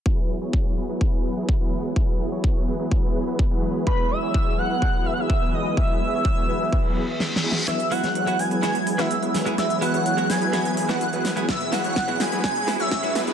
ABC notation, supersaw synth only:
X:1
M:4/4
L:1/16
Q:1/4=126
K:E
V:1 name="Supersaw synth"
[F,B,EGB]3 [F,B,EGc]3 [F,B,EGB] [F,B,EGB]4 [F,B,EGB] z [F,B,EGB]3 | [F,B,E]3 [F,B,EGc]3 [F,B,EGB] [F,B,EGB]4 [F,B,EGB] z [F,B,EGB]3 | [F,B,EGB]3 [F,B,EGc]3 [F,B,EGB] [F,B,EGB]4 [F,B,EGB] z [F,B,EGB]3 | [F,B,EGB]3 [F,B,EGc]3 [F,B,EGB] [F,B,EGB]4 z3 [F,B,EGe] z |
[F,B,EGB]3 [F,B,EGc]3 [F,B,EGB] [F,B,EGB]4 [F,B,EGB] z [F,B,EGB]3 | [F,B,EGB]3 [F,B,EGc]3 [F,B,EGB] [F,B,EGB]4 [F,B,EGB] z [F,B,EGB]3 | [F,B,EB]3 [F,B,EGc]3 [F,B,EGB] [F,B,EGB] [F,B,EGB]3 [F,B,EGc]3 [F,B,EGB] [F,B,EGB] |]